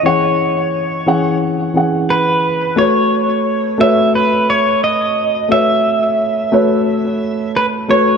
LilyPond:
<<
  \new Staff \with { instrumentName = "Pedal steel guitar" } { \time 4/4 \key a \lydian \tempo 4 = 88 cis''2 r4 b'4 | cis''4. e''8 b'8 cis''8 dis''4 | e''2. b'8 cis''8 | }
  \new Staff \with { instrumentName = "Grand piano" } { \time 4/4 \key a \lydian <e cis' gis' fis''>4. <e cis' gis' fis''>4 <e cis' gis' fis''>4. | <a fis' b' cis''>4. <a fis' b' cis''>2~ <a fis' b' cis''>8 | <a fis' b' cis''>4. <a fis' b' cis''>4 r4 <a fis' b' cis''>8 | }
>>